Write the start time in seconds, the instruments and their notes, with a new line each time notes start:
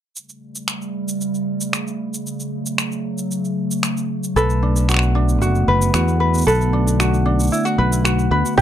0.15 ambient pad C#3 G3 A3, shaker
0.29 shaker
0.55 shaker
0.68 finger snap, shaker
0.82 shaker
1.08 shaker
1.21 shaker
1.34 shaker
1.61 shaker
1.73 finger snap, shaker
1.87 shaker
2.14 shaker
2.26 ambient pad F#3, shaker
2.40 shaker
2.66 shaker
2.78 finger snap, shaker
2.92 shaker
3.18 shaker
3.31 shaker
3.45 shaker
3.71 shaker
3.83 finger snap, shaker
3.97 shaker
4.24 shaker
4.36 fingered electric bass B1, ambient pad D3 B3, ukulele A4 B4, shaker
4.50 shaker
4.63 ukulele D4
4.76 shaker
4.89 ukulele F#4, finger snap, shaker
4.92 finger snap
4.94 finger snap
4.97 finger snap
4.99 finger snap, shaker
5.15 ukulele D4
5.29 shaker
5.42 fingered electric bass F#1, ukulele F#4, shaker
5.55 shaker
5.68 fingered electric bass F#1, ukulele B4
5.82 shaker
5.94 fingered electric bass E2, ukulele F#4, finger snap, shaker
6.08 shaker
6.20 ukulele B4
6.34 shaker
6.38 shaker
6.41 shaker
6.44 fingered electric bass B1, ukulele A4 B4, shaker
6.48 shaker
6.55 shaker
6.58 shaker
6.61 shaker
6.73 ukulele D4
6.88 shaker
7.00 ukulele F#4, finger snap, shaker
7.14 shaker
7.26 ukulele D4
7.40 shaker
7.43 shaker
7.47 shaker
7.50 ukulele E4, shaker
7.53 shaker
7.57 shaker
7.63 ukulele F#4, shaker
7.66 shaker
7.78 fingered electric bass B1, ukulele B4
7.92 shaker
8.04 ukulele F#4, finger snap, shaker
8.19 shaker
8.31 fingered electric bass D2, ukulele B4
8.46 shaker
8.57 fingered electric bass A1, ambient pad C#3 G3 A3, ukulele G4, kick